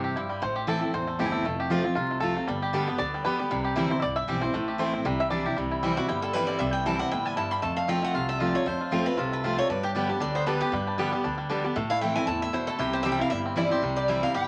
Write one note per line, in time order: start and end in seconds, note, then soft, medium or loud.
0.00 0.29 G2 medium
0.00 0.15 C3 medium
0.00 0.82 C4 medium
0.00 0.39 G4 medium
0.16 0.41 G2 medium
0.16 0.42 E4 medium
0.29 0.41 G3 medium
0.42 0.81 A1 loud
0.42 0.91 A2 loud
0.42 0.68 C5 loud
0.56 0.91 G4 medium
0.67 0.81 E3 loud
0.67 0.81 A3 medium
0.67 0.82 C4 medium
0.67 0.80 E4 loud
0.67 0.94 A4 loud
0.81 1.17 C4 medium
0.81 0.93 C4 medium
0.81 0.92 E4 medium
0.93 1.15 A1 medium
0.93 1.43 E2 medium
0.93 1.26 C5 loud
1.07 1.42 A3 medium
1.19 1.41 G1 medium
1.19 1.44 E3 medium
1.19 1.44 A3 medium
1.19 1.44 C4 medium
1.19 1.44 E4 medium
1.19 1.45 G4 medium
1.26 1.32 G#4 medium
1.32 1.57 A4 medium
1.44 1.84 F1 medium
1.44 1.94 F2 medium
1.44 1.82 A3 medium
1.60 1.94 G4 medium
1.70 1.84 F3 medium
1.70 1.84 A3 loud
1.70 1.85 C4 loud
1.70 1.94 F4 medium
1.70 1.83 F4 loud
1.84 2.20 C4 medium
1.84 1.96 C4 medium
1.84 1.95 F4 medium
1.95 2.36 C2 medium
1.95 2.46 C3 medium
1.95 2.20 F4 medium
2.11 2.35 A3 medium
2.20 2.36 F3 medium
2.20 2.36 A3 medium
2.20 2.36 C4 medium
2.20 2.35 F4 medium
2.20 2.58 A4 loud
2.36 2.47 A3 medium
2.36 2.48 C4 medium
2.36 2.47 F4 medium
2.47 2.87 G1 medium
2.47 2.97 G2 loud
2.47 2.85 G3 medium
2.62 2.97 G4 medium
2.73 2.87 D3 medium
2.73 2.87 G3 loud
2.73 2.88 B3 loud
2.73 2.98 D4 medium
2.73 2.86 G4 loud
2.88 3.23 B3 medium
2.88 2.99 B3 medium
2.88 2.99 G4 medium
2.98 3.38 D2 medium
2.98 3.24 D3 medium
2.98 3.24 D5 loud
3.14 3.38 G3 medium
3.25 3.39 D3 medium
3.25 3.39 G3 medium
3.25 3.39 B3 loud
3.25 3.38 G4 medium
3.25 3.62 B4 loud
3.39 3.50 G3 medium
3.39 3.51 B3 medium
3.39 3.50 G4 medium
3.50 3.70 C2 loud
3.50 4.00 C3 loud
3.50 3.88 G3 medium
3.64 4.00 G4 medium
3.76 3.98 D2 medium
3.76 3.90 E3 loud
3.76 3.90 G3 loud
3.76 3.90 C4 loud
3.76 4.79 E4 medium
3.76 3.89 E4 loud
3.90 4.02 C4 soft
3.90 4.02 E4 medium
3.90 3.99 C5 medium
4.00 4.24 C2 medium
4.00 4.52 G2 medium
4.00 4.17 D5 loud
4.00 4.03 E5 medium
4.16 4.41 E5 loud
4.27 4.50 B1 medium
4.27 4.42 E3 loud
4.27 4.42 G3 medium
4.27 4.42 C4 medium
4.27 4.41 E4 loud
4.27 4.54 G4 medium
4.41 4.54 C4 medium
4.41 4.53 E4 medium
4.41 4.77 C5 loud
4.53 4.93 A1 loud
4.53 5.03 A2 loud
4.53 4.91 A3 medium
4.68 5.03 G4 medium
4.78 4.93 E3 medium
4.78 4.93 A3 loud
4.78 4.93 C4 loud
4.78 4.92 E4 loud
4.78 4.93 C5 medium
4.93 5.05 C4 medium
4.93 5.06 C4 medium
4.93 5.05 E4 medium
5.04 5.44 C2 loud
5.04 5.54 C3 loud
5.04 5.43 G3 medium
5.20 5.30 E5 loud
5.30 5.45 E3 loud
5.30 5.45 G3 medium
5.30 5.45 D4 medium
5.30 5.44 E4 medium
5.30 5.55 D5 loud
5.45 5.57 D4 medium
5.45 5.56 E4 medium
5.45 5.57 G4 medium
5.57 5.96 C2 medium
5.57 6.07 C3 medium
5.57 5.94 G3 medium
5.71 6.06 E4 medium
5.83 5.96 E3 loud
5.83 5.97 G3 loud
5.83 6.86 C4 medium
5.83 5.97 C4 loud
5.83 5.96 E4 loud
5.97 6.22 G3 medium
5.97 6.09 C4 medium
5.97 6.08 E4 medium
5.97 6.08 F#4 medium
6.08 6.48 G1 medium
6.08 6.58 G2 medium
6.08 6.34 E4 medium
6.08 6.22 G4 medium
6.22 6.47 G3 medium
6.22 6.33 A4 medium
6.33 6.59 E3 medium
6.33 6.59 G3 medium
6.33 6.60 C4 medium
6.33 6.72 E4 medium
6.33 6.60 E4 medium
6.33 6.48 B4 medium
6.47 6.59 G3 medium
6.47 6.59 D5 medium
6.59 7.00 C2 loud
6.59 7.09 C3 loud
6.59 6.97 G3 medium
6.59 6.73 E5 medium
6.73 6.85 G5 loud
6.86 6.99 E3 loud
6.86 7.00 G3 medium
6.86 7.88 C4 medium
6.86 7.00 C4 medium
6.86 6.98 E4 loud
6.86 6.99 A5 medium
6.99 7.24 G3 medium
6.99 7.12 C4 medium
6.99 7.11 E4 medium
6.99 7.11 F#5 medium
7.11 7.51 G1 medium
7.11 7.36 A2 medium
7.11 7.36 E4 medium
7.11 7.26 G5 medium
7.25 7.50 G3 medium
7.25 7.37 G#5 loud
7.37 7.62 G2 medium
7.37 7.63 E4 medium
7.37 7.51 A5 medium
7.51 7.62 G3 medium
7.51 7.62 B5 loud
7.62 8.12 F2 loud
7.62 8.03 F2 loud
7.62 8.00 A3 medium
7.62 7.77 A5 medium
7.77 7.88 F5 medium
7.88 8.13 F3 medium
7.88 8.13 A3 loud
7.88 8.26 C4 medium
7.88 8.14 C4 loud
7.88 8.14 F4 loud
7.88 8.03 G5 loud
8.03 8.28 A3 medium
8.03 8.15 F#5 loud
8.14 8.54 C2 medium
8.14 8.64 C3 medium
8.14 8.39 F4 medium
8.14 8.28 F5 medium
8.29 8.54 A3 medium
8.29 8.41 E5 medium
8.40 8.54 F3 medium
8.40 8.54 A3 medium
8.40 8.54 C4 medium
8.40 8.78 F4 medium
8.40 8.53 F4 medium
8.40 8.55 D5 medium
8.54 8.65 A3 medium
8.54 8.66 C4 medium
8.54 8.66 F4 medium
8.54 8.67 C#5 loud
8.66 9.06 F2 loud
8.66 9.15 F2 medium
8.66 9.04 A3 medium
8.66 9.06 C5 medium
8.81 9.16 F4 medium
8.91 9.05 F3 medium
8.91 9.06 A3 medium
8.91 9.06 C4 loud
8.91 9.30 C4 medium
8.91 9.06 F4 loud
9.06 9.31 A3 medium
9.06 9.18 C4 medium
9.06 9.18 F4 medium
9.06 9.17 B4 loud
9.17 9.57 C2 medium
9.17 9.67 C3 medium
9.17 9.43 F4 medium
9.17 9.32 A4 medium
9.32 9.57 A3 medium
9.32 9.45 B4 medium
9.44 9.58 F3 medium
9.44 9.58 A3 medium
9.44 9.58 C4 loud
9.44 9.69 F4 medium
9.44 9.56 F4 loud
9.44 9.58 C5 medium
9.57 9.70 A3 medium
9.57 9.70 C4 medium
9.57 9.69 F4 medium
9.57 9.69 C#5 loud
9.69 10.09 G2 loud
9.69 10.19 G2 loud
9.69 10.07 D4 medium
9.69 9.84 B4 medium
9.83 9.90 G4 loud
9.83 10.19 G4 medium
9.95 10.09 D3 medium
9.95 10.20 G3 medium
9.95 10.09 G3 loud
9.95 10.09 B3 loud
9.95 10.08 G4 loud
10.09 10.21 B3 soft
10.09 10.44 D4 medium
10.09 10.21 G4 medium
10.20 10.61 D2 medium
10.20 10.45 D3 medium
10.20 10.58 G3 medium
10.20 10.35 D5 loud
10.35 10.70 B3 medium
10.35 10.46 C5 medium
10.46 10.60 D3 medium
10.46 10.61 G3 medium
10.46 10.61 B3 loud
10.46 10.84 D4 medium
10.46 10.60 G4 loud
10.46 10.59 B4 medium
10.61 10.73 B3 medium
10.61 10.72 G4 medium
10.61 10.96 G4 medium
10.61 11.20 B4 loud
10.72 11.22 G2 loud
10.72 11.12 G2 medium
10.72 11.10 G3 medium
10.87 11.22 D4 medium
10.98 11.12 D3 loud
10.98 11.12 G3 loud
10.98 11.36 B3 medium
10.98 11.12 B3 loud
10.98 11.11 G4 loud
11.12 11.37 G3 medium
11.12 11.24 B3 medium
11.12 11.24 G4 medium
11.24 11.64 D2 medium
11.24 11.48 D3 medium
11.24 11.48 D4 medium
11.38 11.63 G3 medium
11.49 11.64 D3 loud
11.49 11.64 G3 medium
11.49 11.64 B3 loud
11.49 11.76 D4 medium
11.49 11.63 G4 loud
11.64 11.76 G3 medium
11.64 11.76 B3 medium
11.64 11.75 G4 medium
11.76 12.25 A2 loud
11.76 12.16 A2 loud
11.76 12.13 A3 medium
11.90 12.28 E4 medium
11.90 12.01 F5 loud
12.01 12.16 E3 medium
12.01 12.16 A3 loud
12.01 13.42 C4 medium
12.01 12.16 C4 loud
12.01 12.14 E4 loud
12.01 12.15 G5 medium
12.16 12.41 A3 medium
12.16 12.28 C4 medium
12.16 12.27 E4 medium
12.16 12.26 G#5 loud
12.27 12.67 E2 medium
12.27 12.52 A2 medium
12.27 12.53 E4 medium
12.27 12.41 A5 loud
12.42 12.67 A3 medium
12.42 12.53 E5 loud
12.53 12.78 B2 medium
12.53 12.79 E4 medium
12.53 12.68 C5 medium
12.67 12.79 A3 medium
12.67 12.79 A4 loud
12.79 13.19 C2 loud
12.79 13.28 C3 loud
12.79 13.17 E4 medium
12.79 12.93 G4 medium
12.93 13.29 G4 medium
12.93 13.05 C5 medium
13.03 13.19 E3 medium
13.03 13.29 G3 medium
13.03 13.19 G3 loud
13.03 13.19 C4 loud
13.03 13.17 E4 loud
13.03 13.11 E5 loud
13.12 13.21 G5 loud
13.19 13.31 C4 medium
13.19 13.30 E4 medium
13.19 13.55 E4 medium
13.19 13.30 F5 loud
13.30 13.71 G1 medium
13.30 13.80 G2 medium
13.30 13.68 G3 medium
13.30 13.39 E5 loud
13.46 13.81 C4 medium
13.56 13.70 E3 medium
13.56 13.70 G3 loud
13.56 13.70 C4 medium
13.56 13.69 E4 loud
13.56 13.83 E4 medium
13.56 13.71 D5 loud
13.70 13.82 C4 medium
13.70 13.82 E4 medium
13.70 13.83 G4 medium
13.70 13.98 C5 loud
13.82 14.22 C2 medium
13.82 14.32 C3 medium
13.82 14.20 G3 medium
13.96 14.32 G4 medium
13.96 14.08 D5 loud
14.08 14.22 E3 medium
14.08 14.23 G3 medium
14.08 14.22 C4 loud
14.08 14.46 E4 medium
14.08 14.21 E4 loud
14.08 14.23 E5 loud
14.22 14.48 G3 medium
14.22 14.34 C4 medium
14.22 14.34 E4 medium
14.22 14.34 F5 loud
14.34 14.48 G1 medium
14.34 14.48 G2 medium
14.34 14.48 G4 medium
14.34 14.48 G5 loud